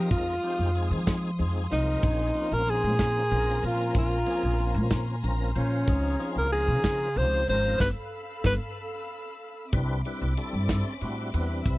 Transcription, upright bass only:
0.11 F2
0.59 F2
0.91 F3
1.39 F2
1.71 C2
2.03 A#1
2.51 A#1
2.83 A#2
3.31 A#1
3.63 A#2
3.95 A#1
4.43 A#1
4.75 A#2
5.23 A#1
5.56 A#2
5.87 C#2
6.36 C#2
6.68 C#3
7.16 C#2
7.48 G#1
7.80 G1
8.44 G1
9.73 C2
10.22 C2
10.53 G2
11.02 A2
11.34 E2
11.66 C2

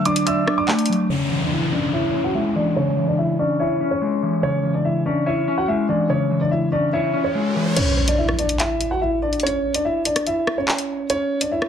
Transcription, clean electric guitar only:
Already playing: D3 F#3
0.06 D4
0.26 D5
0.46 D4
0.68 A3
0.89 F#3
1.09 C#3
1.31 E3
1.72 C#4
1.93 C#5
2.14 C#4
2.34 G#3
2.55 E3
2.77 C#3
2.97 E3
3.39 C#4
3.60 C#5
3.80 C#4
4.01 G#3
4.23 E3
4.42 C#3
4.64 E3
5.06 C#4
5.26 C#5
5.48 C#4
5.68 G#3
5.88 E3
6.09 C#3
6.31 E3
6.72 C#4
6.94 C#5
7.14 C#4
7.35 G#3
7.56 E3

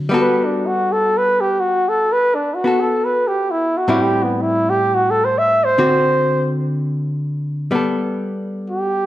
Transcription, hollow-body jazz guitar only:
Already playing: D3 C4 D#4
0.09 G3 B3
0.14 F#4 A4
2.64 B3 F#4 A4
3.88 A2 G3 C4 E4
5.78 D3 C4 F#4
7.71 G3 B3
7.75 A4

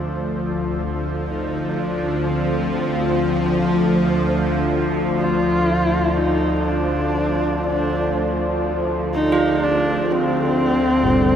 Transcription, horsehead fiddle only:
Already playing: D4
1.27 D#4
1.78 D4
2.30 C4
5.18 F4
6.17 D#4
6.67 D4
7.67 D4
9.14 D#4
9.63 D4
10.12 C4

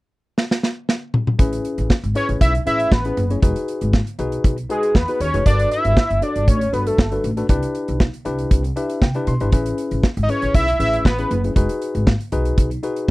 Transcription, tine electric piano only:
1.39 C#4 E4 G#4 B4
2.15 C#4 E4 G#4 B4
2.66 C#4 E4 G#4 B4
3.05 C#4 E4 G#4 B4
3.30 C#4 E4 G#4 C#5
3.42 D#4 F#4 G#4 B4
4.19 D#4 F#4 G#4 B4
4.69 D#4 F#4 G#4 B4
5.08 D#4 F#4 G#4 B4
5.34 D#4 F#4 G#4 B4
5.46 D4 F#4 A4 A#4
5.53 B4
6.22 D4 F#4 A4 C#5
6.29 D5
6.73 D4 F#4 A4 B4
7.12 D4 F#4 A4 B4
7.37 D4 F#4 A4 B4
7.49 D4 E4 G4 B4
8.25 D4 E4 G4 B4
8.76 D4 E4 G4 B4 E5
9.02 G5
9.15 D4 E4 G4 B4
9.28 C6
9.41 D4 E4 G4 B4
9.52 C#4 E4 G#4 B4
10.28 C#4 E4 G#4 B4
10.79 C#4 E4 G#4 B4
11.19 C#4 E4 G#4 B4
11.44 C#4 E4 G#4 B4
11.56 D#4 F#4 G#4 B4
12.32 D#4 F#4 G#4 B4
12.83 D#4 F#4 G#4 B4

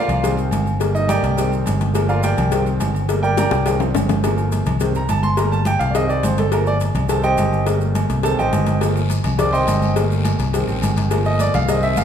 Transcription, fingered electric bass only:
0.08 C2
0.51 G1
1.23 C2
1.67 G1
2.38 C2
2.80 G1
3.51 C2
3.94 G1
4.66 C2
5.09 G1
5.80 C2
6.23 G1
6.94 C2
7.38 G1
8.10 C2
8.39 A1
8.53 G1
9.24 C2
9.67 G1
10.39 C2
10.67 A1
10.82 G1
11.54 C2
11.97 G1

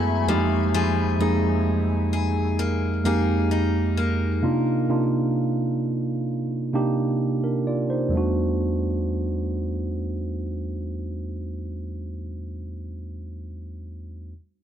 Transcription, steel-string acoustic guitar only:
Already playing: F#3 B3 E4 A4
0.28 F3
0.74 F3 G#4
1.20 D#4
2.13 G#4
2.59 A#3
3.05 A#3 D#4 G#4
3.51 D#4
3.97 A#3

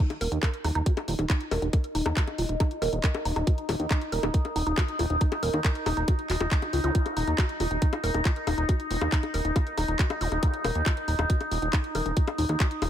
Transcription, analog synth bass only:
0.21 D#1
0.32 D#2
0.64 D#1
0.75 D#1
1.08 D#1
1.19 D#1
1.51 D#1
1.62 D#1
1.95 D#1
2.06 D#2
2.38 D#1
2.49 D#1
2.82 D#1
2.93 D#1
3.25 D#1
3.36 D#1
3.69 D#1
3.80 D#2
4.12 D#1
4.23 D#1
4.56 D#1
4.67 D#1
4.99 D#1
5.10 D#1
5.43 D#1
5.54 D#2
5.86 D#1
5.97 D#1
6.30 D#1
6.41 D#1
6.73 C#2
6.84 C#2
7.17 D#1
7.28 D#2
7.60 D#1
7.71 D#1
8.04 D#1
8.14 D#1
8.47 D#1
8.58 D#1
8.91 D#1
9.01 D#2
9.34 D#1
9.45 D#1
9.78 D#1
9.88 D#1
10.21 D#1
10.32 D#1
10.64 D#1
10.75 D#2
11.08 D#1
11.19 D#1
11.51 D#1
11.62 D#1
11.95 D#1
12.06 D#1
12.38 D#1
12.49 D#2
12.82 D#1

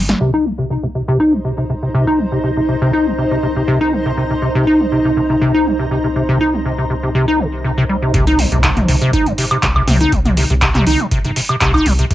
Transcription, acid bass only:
0.09 A#3
0.21 C3
0.34 D#4
0.46 F3
0.59 C3
0.70 C3
0.83 C3
0.95 C3
1.08 C3
1.20 D#4
1.33 F3
1.45 C3
1.58 C3
1.70 C3
1.83 C3
1.94 C3
2.07 D#4
2.19 F3
2.32 C3
2.44 C3
2.57 C3
2.69 C3
2.82 C3
2.93 D#4
3.07 F3
3.18 C3
3.31 C3
3.43 C3
3.56 C3
3.68 C3
3.81 D#4
3.93 F3
4.06 C3
4.17 C3
4.30 C3
4.42 C3
4.55 C3
4.67 D#4
4.80 F3
4.92 C3
5.05 C3
5.17 C3
5.30 C3
5.41 C3
5.54 D#4
5.66 F3
5.79 C3
5.91 C3
6.04 C3
6.16 C3
6.29 C3
6.41 D#4
6.54 F3
6.65 C3
6.78 C3
6.90 C3
7.03 C3
7.15 C3
7.28 D#4
7.40 C3
7.64 C3
7.78 C3
7.89 G3
8.02 C3
8.14 C3
8.27 D#4
8.39 F3
8.52 C3
8.64 C3
8.77 C3
8.88 C3
9.02 C3
9.13 D#4
9.26 F3
9.38 C3
9.51 C3
9.63 C3
9.76 C3
9.88 C3
10.01 D#4
10.12 F3
10.26 C3
10.37 C3
10.50 C3
10.62 C3
10.75 C3
10.87 D#4
11.00 F3
11.12 C3
11.25 C3
11.37 C3
11.50 C3
11.61 C3
11.74 D#4
11.86 F3
11.99 C3
12.11 C3

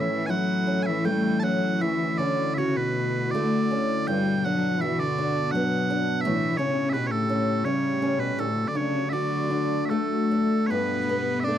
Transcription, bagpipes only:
0.00 E5
0.11 E5
0.26 F#5 G#5
0.83 E5 G#5
1.05 G5
1.40 F#5 A5
1.81 E5
2.18 D5
2.54 C#5 E5
2.77 B4
3.31 D5
4.07 G5
4.45 F#5
4.81 E5
4.99 D5
5.51 F#5
6.21 E5
6.57 C#5
6.89 B4 E5
7.07 C#5
7.11 A4
7.65 C#5
8.20 B4
8.40 A4
8.68 D5
8.76 C#5
9.09 D5 E5
9.85 E5
9.89 A4
10.67 B4 C#5
11.40 E5
11.44 D5

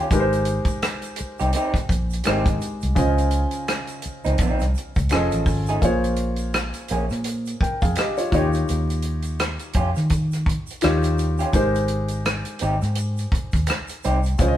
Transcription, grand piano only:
Already playing: D#3 D#4 F4 G4 C#5
0.10 G#3 D#4 G4 A#4 B4
0.20 C5
2.25 G#3 D#4 G4 A#4 D#5
2.95 C#3 C#4 F4 C5 D#5
5.11 F3 C#4 G#4 A4 D#5
5.82 A#3 F4 G#4 C5 C#5
7.62 A#4 G5
7.82 G#4 F5
7.97 G4 D#5
8.18 F4 C#5
8.32 D#3 D#4 F4 G4 C#5
10.82 D#3 D#4 F4 G4 C#5
11.52 G#3 D#4 G4 A#4 C5
14.39 C#3 C#4 F4 C5 C#5
14.48 D#5

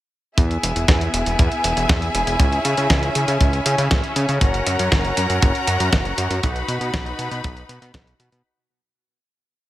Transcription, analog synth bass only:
0.38 E2
0.63 E1
0.76 E1
0.88 E2
1.13 E1
1.26 E1
1.39 E2
1.64 E1
1.77 E1
1.89 E2
2.14 E1
2.27 E1
2.40 C#2
2.65 C#3
2.78 C#3
2.90 C#2
3.16 C#3
3.28 C#3
3.41 C#2
3.66 C#3
3.78 C#3
3.91 C#2
4.16 C#3
4.29 C#3
4.41 F#1
4.67 F#2
4.79 F#2
4.92 F#1
5.17 F#2
5.30 F#2
5.43 F#1
5.67 F#2
5.80 F#2
5.93 F#1
6.18 F#2
6.30 F#2
6.43 B1
6.68 B2
6.81 B2
6.94 B1
7.19 B2
7.31 B2
7.44 B1
7.69 B2
7.82 B2
7.94 B1
8.20 B2
8.32 B2

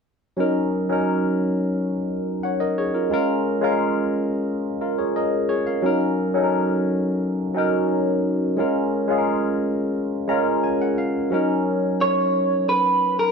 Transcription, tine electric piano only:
0.37 F#3 C#4 D#4 A#4
0.89 F#3 C#4 D#4 A#4
2.43 C#5 F#5
2.60 A#4 D#5
2.78 G#4 C#5
2.94 F4 A#4
3.10 G#3 C#4 F4 A#4
3.61 G#3 C#4 F4 A#4
4.81 F4 A#4
4.98 G#4 C#5
5.16 A#4 D#5
5.49 G#4 C#5
5.67 A#4 F5
5.82 F#3 C#4 D#4 A#4
6.34 F#3 C#4 D#4 A4
6.44 A#4
7.54 F#3 C#4 D#4
7.58 A#4
8.57 G#3 C#4 F4 A#4
9.08 G#3 C#4 F4 G#4
9.18 A#4
10.27 G#3 C#4 F4 A#5
10.31 A#4
10.64 G#5
10.81 F#5
10.98 F5
11.30 F#3 C#4 D#4 A#4

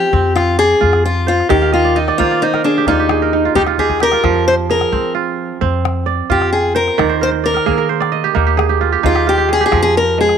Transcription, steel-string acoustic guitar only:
Already playing: G4
0.35 F4
0.59 G#4
1.05 F4
1.28 F4
1.50 G4
1.74 F4
1.96 D#4
2.18 F4
2.42 D#4
2.64 D4
2.88 D#4
3.55 G4
3.79 G#4
4.03 A#4
4.48 C5
4.71 A#4
6.31 G4
6.53 G#4
6.76 A#4
7.23 C5
7.46 A#4
9.06 F4
9.29 G4
9.53 G#4
9.66 G#4
9.83 G#4
9.97 A#4
10.21 G#4

